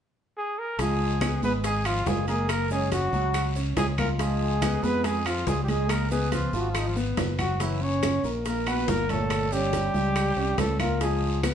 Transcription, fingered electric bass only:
0.79 C#2
1.42 G#1
2.06 F#1
3.13 C#2
3.77 C#2
4.83 F2
5.47 C#2
6.53 G#1
7.17 F#1
8.24 A#1
8.87 G1
9.94 C#2
10.37 C2
10.58 C#2

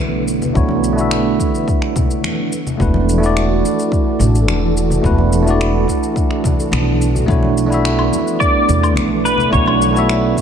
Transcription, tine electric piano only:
Already playing: A3 D4 E4 F#4 C#5 E5
0.53 A3 D4 E4 F#4 C#5
0.93 A3 D4
0.97 E4 F#4 E5
2.78 A3 D4 E4 F#4
2.82 B4
3.18 A3 D4
3.22 E4 F#4 D5
5.02 A3 D4 E4 F#4
5.06 B4
5.42 A3 D4
5.47 E4 F#4 D5
7.26 A3 D4 E4 F#4 C#5
7.66 A3 D4 E4
7.72 F#4 E5
9.50 A3 D4 E4 F#4 C#5
9.91 A3 D4 E4
9.97 F#4 E5

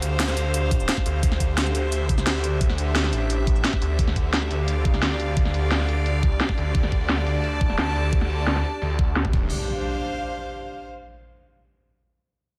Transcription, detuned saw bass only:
Already playing: D2
0.37 D2
1.06 D2
1.23 D2
1.75 D2
2.27 D2
3.13 A1
3.82 D2
3.99 D2
4.51 D2
5.02 D2
5.89 D2
6.58 D2
6.75 D2
7.27 D2
7.78 D2
8.82 D2
9.33 D1

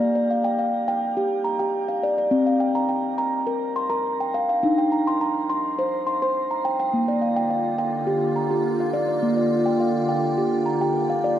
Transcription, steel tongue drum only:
Already playing: D5
0.00 A#3
0.15 D5
0.31 F5
0.44 G5
0.59 F5
0.88 G5
1.17 G4
1.44 A#5
1.59 G4 G5
1.88 F5
2.03 D5
2.18 D5
2.31 C4
2.47 F5
2.60 G5
2.75 A#5
2.89 G5
3.18 A#5
3.47 A#4
3.76 C6
3.90 A#4 A#5
4.21 G5
4.34 F5
4.49 F5
4.63 D4 D#4
4.78 G5
4.92 A#5
5.07 C6
5.21 A#5
5.50 C6
5.79 C5
6.07 C6
6.22 C5 C6
6.51 A#5
6.65 G5
6.80 G5
6.93 A#3
7.08 D5
7.22 F5
7.36 G5
7.50 F5
7.78 G5
8.07 G4
8.36 A#5
8.51 G4
8.80 F5
8.93 D5
9.09 D5
9.22 A#3
9.37 D5
9.66 G5
9.80 F5
10.09 G5
10.38 G4
10.66 A#5
10.81 G4 G5
11.10 F5
11.24 D5

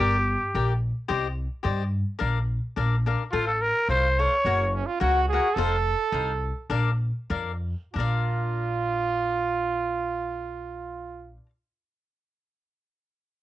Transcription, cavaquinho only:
0.00 G4 A#4 D5 G5
0.55 G4 A#4 D5 G5
1.08 G4 C5 D5 D#5
1.63 G4 C5 D5 D#5
2.18 D4 A#4 D5 F5
2.76 D4 A#4 D5 F5
3.06 D4 A#4 D5 F5
3.33 F4 A4 C5 F5
3.89 F4 A4 C5 F5
4.19 F4 A4 C5 F5
4.46 F#4 A#4 C#5 F#5
5.00 F#4 A#4 C#5 F#5
5.32 F#4 A#4 C#5 F#5
5.57 D#4 A4 C5 F5
6.12 D#4 A4 C5 F5
6.70 D4 A#4 D5 F5
7.30 D4 A#4 D5 F5
7.94 D4 A#4
7.99 D5 F5

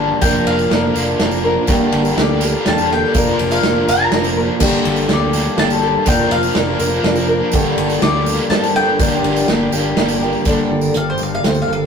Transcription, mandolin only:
Already playing: A5
0.21 G5
0.47 F5
2.21 D5
2.68 A5
2.93 G5
3.52 F5
3.89 A#5
5.13 D5
5.59 A5
6.08 G5
6.31 F5
8.02 D5
8.50 A5
8.76 G5
10.97 F5
11.10 C5
11.23 F5
11.35 F5
11.48 C5
11.62 F5
11.73 F5

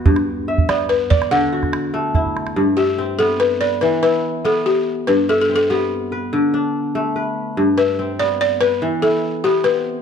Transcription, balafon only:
0.69 D5
0.89 B4
1.10 D5
1.31 F#5
2.77 G4
3.19 A4
3.40 B4
3.61 D5
3.81 B4
4.03 B4
4.45 A4
4.66 G4
5.07 B4
5.29 A4
5.41 A4
5.56 A4
5.70 G4
7.78 B4
8.19 D5
8.41 D5
8.61 B4
9.02 A4
9.44 G4
9.64 B4

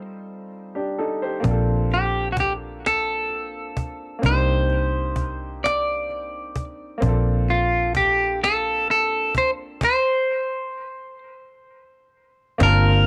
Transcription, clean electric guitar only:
1.94 G4
2.32 F#4
2.40 G4
2.87 A4
4.26 C5
5.64 D5
7.50 F4
7.97 G4
8.44 A4
8.91 A4
9.38 C5
9.84 C5
12.63 A#4

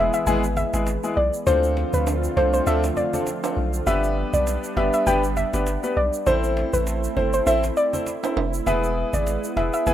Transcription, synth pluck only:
Already playing: E5
0.14 E5
0.27 G#5
0.57 E5
1.17 D5
1.47 C5
1.94 B4
2.37 C5
2.54 C5
2.67 E5
2.97 D5
3.87 E5
4.34 D5
4.77 E5
4.94 E5
5.07 G5
5.37 E5
5.97 D5
6.27 C5
6.73 B4
7.17 C5
7.34 C5
7.47 E5
7.77 D5
8.67 E5
9.14 D5
9.57 E5
9.74 E5
9.87 G#5

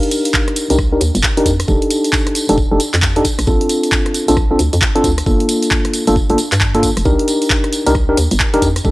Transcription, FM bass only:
0.70 C2
1.01 D#2
1.15 G1
1.46 F2
1.68 F1
2.49 F1
2.72 F1
2.94 F2
3.39 A#1
3.47 A#1
4.28 A#1
4.59 D2
4.73 F2
5.04 D2
5.26 G1
6.07 G1
6.30 G1
6.52 G2
6.97 F1
7.06 C2
7.87 C2
8.17 D#2
8.31 G1
8.62 F2
8.85 F1

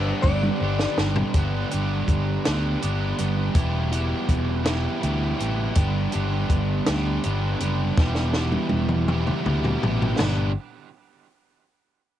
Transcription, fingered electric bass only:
Already playing: G1
0.24 G1
0.61 G1
0.98 G1
1.34 G1
1.74 G1
2.08 G1
2.47 D2
2.84 G1
3.20 G1
3.55 E1
4.29 E1
5.04 D2
5.41 A1
5.77 G1
6.15 G1
6.50 G1
6.88 D2
7.25 G1
7.61 F#1
7.98 E1
8.71 E1
9.46 D2
9.84 A1
10.20 G1

